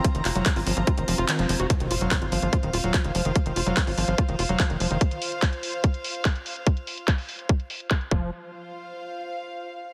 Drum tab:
HH |xxoxxooxxxoxxxox|xxoxxxoxxxoxxxox|xxoxxooxxxoxxxox|xxoxxxoxxxoxxxox|
CP |--x-x-------x---|----x-------x---|----x-------x---|----x-------x---|
BD |o---o---o-------|o---o---o---o---|o---o---o---o---|o---o---o---o---|

HH |xxoxxooxxxoxxx--|----------------|
CP |----x-------x---|----------------|
BD |o---o---o---o-o-|----------------|